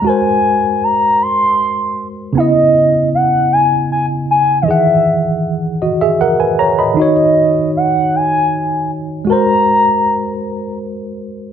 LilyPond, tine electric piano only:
\new Staff \with { instrumentName = "Tine electric piano" } { \time 6/8 \key cis \dorian \tempo 4. = 52 << { r2. | r2. | r4. <fis' dis''>16 <gis' e''>16 <ais' fis''>16 <b' gis''>16 <cis'' ais''>16 <dis'' b''>16~ | <dis'' b''>16 r2 r8. |
r2. | } \\ { <gis fis' ais' bis'>2. | <cis b e' dis''>2. | <dis e gis' fis''>2. | <dis dis' fis' cis''>2. |
<gis fis' ais' bis'>2. | } >> }